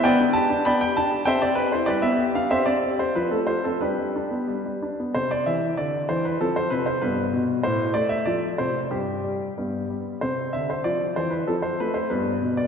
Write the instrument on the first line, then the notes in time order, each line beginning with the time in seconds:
grand piano
0.04 B3 B4 D5 G5
0.20 D4
0.33 G4 A5
0.50 D4
0.65 B3 D5 G5 B5
0.81 G4 G5
0.97 D4 A5
1.11 G4
1.25 C4 C5 E5 G5
1.42 C4 D5
1.55 G4 B4
1.72 E4 C5
1.86 G3 G4 B4 D5
2.02 B3 E5
2.19 G4
2.35 D4 F5
2.51 C4 G4 C5 E5
2.66 C4 D5
2.83 G4
2.99 C4 C5
3.15 F3 B4
3.31 A3 A4
3.47 F4 C5
3.64 C4 A4
3.81 G3 D4 G4 B4
3.99 G3
4.16 D4
4.31 B3
4.48 G3
4.66 G3
4.83 D4
5.00 B3
5.15 C3 C4 C5
5.31 D5
5.46 E3 E5
5.77 D3 D5
6.09 E3 C5
6.25 B4
6.41 F3 C4 A4
6.56 C5
6.70 C3 B4
6.86 C5
7.02 G2 B3 B4
7.33 B2
7.63 A2 A3 C5
7.94 A3 D5
8.09 E5
8.26 F3 A3 D5
8.58 C3 C5
8.91 G2 G3 G4
9.24 G3
9.58 G2 B3
9.90 G3
10.21 C3 C4 C5
10.53 D3 E5
10.70 C5
10.84 F3 D5
11.16 E3 C5
11.31 B4
11.47 F3 C4 A4
11.62 C5
11.80 A3 B4
11.94 C5
12.10 G2 B3 B4
12.42 B2
12.57 D5